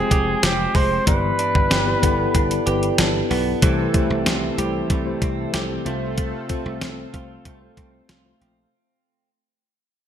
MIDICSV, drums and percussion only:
0, 0, Header, 1, 2, 480
1, 0, Start_track
1, 0, Tempo, 638298
1, 805, Time_signature, 4, 2, 24, 8
1, 7579, End_track
2, 0, Start_track
2, 0, Title_t, "Drums"
2, 84, Note_on_c, 9, 36, 92
2, 86, Note_on_c, 9, 42, 67
2, 159, Note_off_c, 9, 36, 0
2, 161, Note_off_c, 9, 42, 0
2, 324, Note_on_c, 9, 38, 106
2, 326, Note_on_c, 9, 42, 84
2, 400, Note_off_c, 9, 38, 0
2, 401, Note_off_c, 9, 42, 0
2, 563, Note_on_c, 9, 36, 94
2, 568, Note_on_c, 9, 46, 56
2, 638, Note_off_c, 9, 36, 0
2, 643, Note_off_c, 9, 46, 0
2, 805, Note_on_c, 9, 36, 104
2, 805, Note_on_c, 9, 42, 83
2, 880, Note_off_c, 9, 36, 0
2, 880, Note_off_c, 9, 42, 0
2, 1044, Note_on_c, 9, 42, 68
2, 1120, Note_off_c, 9, 42, 0
2, 1167, Note_on_c, 9, 36, 87
2, 1242, Note_off_c, 9, 36, 0
2, 1286, Note_on_c, 9, 38, 109
2, 1287, Note_on_c, 9, 42, 82
2, 1361, Note_off_c, 9, 38, 0
2, 1362, Note_off_c, 9, 42, 0
2, 1527, Note_on_c, 9, 36, 79
2, 1528, Note_on_c, 9, 42, 81
2, 1602, Note_off_c, 9, 36, 0
2, 1603, Note_off_c, 9, 42, 0
2, 1764, Note_on_c, 9, 36, 82
2, 1765, Note_on_c, 9, 42, 85
2, 1839, Note_off_c, 9, 36, 0
2, 1840, Note_off_c, 9, 42, 0
2, 1887, Note_on_c, 9, 42, 57
2, 1962, Note_off_c, 9, 42, 0
2, 2006, Note_on_c, 9, 42, 66
2, 2081, Note_off_c, 9, 42, 0
2, 2126, Note_on_c, 9, 42, 56
2, 2202, Note_off_c, 9, 42, 0
2, 2244, Note_on_c, 9, 38, 106
2, 2245, Note_on_c, 9, 42, 90
2, 2319, Note_off_c, 9, 38, 0
2, 2320, Note_off_c, 9, 42, 0
2, 2488, Note_on_c, 9, 46, 56
2, 2563, Note_off_c, 9, 46, 0
2, 2725, Note_on_c, 9, 42, 83
2, 2726, Note_on_c, 9, 36, 104
2, 2800, Note_off_c, 9, 42, 0
2, 2801, Note_off_c, 9, 36, 0
2, 2964, Note_on_c, 9, 42, 68
2, 2966, Note_on_c, 9, 36, 85
2, 3039, Note_off_c, 9, 42, 0
2, 3041, Note_off_c, 9, 36, 0
2, 3205, Note_on_c, 9, 38, 107
2, 3206, Note_on_c, 9, 42, 80
2, 3281, Note_off_c, 9, 38, 0
2, 3281, Note_off_c, 9, 42, 0
2, 3448, Note_on_c, 9, 42, 76
2, 3523, Note_off_c, 9, 42, 0
2, 3685, Note_on_c, 9, 36, 87
2, 3685, Note_on_c, 9, 42, 80
2, 3760, Note_off_c, 9, 36, 0
2, 3760, Note_off_c, 9, 42, 0
2, 3924, Note_on_c, 9, 36, 87
2, 3925, Note_on_c, 9, 42, 68
2, 3999, Note_off_c, 9, 36, 0
2, 4000, Note_off_c, 9, 42, 0
2, 4164, Note_on_c, 9, 38, 99
2, 4165, Note_on_c, 9, 42, 81
2, 4239, Note_off_c, 9, 38, 0
2, 4240, Note_off_c, 9, 42, 0
2, 4407, Note_on_c, 9, 42, 54
2, 4482, Note_off_c, 9, 42, 0
2, 4644, Note_on_c, 9, 42, 81
2, 4646, Note_on_c, 9, 36, 96
2, 4719, Note_off_c, 9, 42, 0
2, 4721, Note_off_c, 9, 36, 0
2, 4883, Note_on_c, 9, 42, 64
2, 4886, Note_on_c, 9, 36, 79
2, 4959, Note_off_c, 9, 42, 0
2, 4961, Note_off_c, 9, 36, 0
2, 5124, Note_on_c, 9, 38, 108
2, 5125, Note_on_c, 9, 42, 72
2, 5200, Note_off_c, 9, 38, 0
2, 5200, Note_off_c, 9, 42, 0
2, 5367, Note_on_c, 9, 42, 74
2, 5368, Note_on_c, 9, 36, 79
2, 5443, Note_off_c, 9, 36, 0
2, 5443, Note_off_c, 9, 42, 0
2, 5605, Note_on_c, 9, 36, 79
2, 5605, Note_on_c, 9, 42, 82
2, 5680, Note_off_c, 9, 36, 0
2, 5680, Note_off_c, 9, 42, 0
2, 5845, Note_on_c, 9, 36, 81
2, 5846, Note_on_c, 9, 42, 61
2, 5920, Note_off_c, 9, 36, 0
2, 5921, Note_off_c, 9, 42, 0
2, 6084, Note_on_c, 9, 38, 98
2, 6086, Note_on_c, 9, 42, 76
2, 6159, Note_off_c, 9, 38, 0
2, 6161, Note_off_c, 9, 42, 0
2, 6328, Note_on_c, 9, 42, 54
2, 6404, Note_off_c, 9, 42, 0
2, 7579, End_track
0, 0, End_of_file